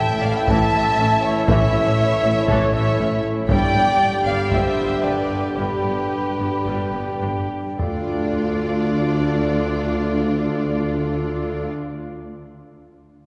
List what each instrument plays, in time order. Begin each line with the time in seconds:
Already playing: timpani A2, trombone section E3 A3, french horn section C#4 E4, pipe organ E4 A4 C#5 E5, viola section E4, violin section E5 G5
0.00 trumpet G5
0.22 double bass section A1, tuba A1, cello section A2, viola section A3, violin section D5 F5, trumpet F5
0.33 violin section E5 G5
0.38 trumpet G5
0.47 double bass section A1, tuba A1, cello section A2, viola section E3, violin section E5 A5, trumpet A5, taiko
0.72 double bass section A1, tuba A1, cello section A2, viola section A3
0.97 double bass section A1, tuba A1, cello section A2, viola section C#4
1.22 violin section C#5 E5, trumpet E5
1.46 double bass section A1, tuba A1, cello section A2, viola section E3, violin section C#5 E5, trumpet E5, taiko
1.72 double bass section A1, tuba A1, cello section A2, viola section A3
2.23 double bass section A1, tuba A1, cello section A2, viola section A3
2.47 double bass section A1, tuba A1, cello section A2, viola section E3, violin section A4 C#5, trumpet C#5, taiko
2.73 double bass section A1, tuba A1, cello section A2, viola section A3, violin section C#5 E5, trumpet E5
2.98 double bass section A1, tuba A1, cello section A2, viola section C#4
3.48 double bass section G1, tuba G1, cello section G2, trombone section D3 G3, viola section G3 G4, french horn section D4 G4, pipe organ D4 G4 D5 G5, violin section D5 G5, trumpet G5, taiko
3.74 double bass section G1, tuba G1, cello section G2, viola section B3
4.25 double bass section G1, tuba G1, cello section G2, viola section B3, violin section D5 F5, trumpet F5
4.51 tuba G1, double bass section G1, cello section G2, viola section G3, violin section C5 E5, trumpet E5, taiko
4.77 tuba G1, double bass section G1, cello section G2, viola section B3
5.03 tuba G1, double bass section G1, cello section G2, viola section D4, violin section B4 D5, trumpet D5
5.56 tuba G1, double bass section G1, cello section G2, viola section G3, violin section G4 B4, trumpet B4
5.83 double bass section G1, tuba G1, cello section G2, viola section B3
6.38 double bass section G1, tuba G1, cello section G2, viola section B3
6.64 double bass section G1, tuba G1, cello section G2, viola section G3
6.93 double bass section G1, tuba G1, cello section G2, viola section B3
7.21 tuba G1, double bass section G1, cello section G2, viola section D4
7.78 tuba D2, cello section D2, double bass section D2, timpani D3, pipe organ D4 A4 D5 F5, viola section D4 F4, french horn section D4 F4, violin section F4 D5, trumpet D5, taiko low
7.82 trombone section D3 A3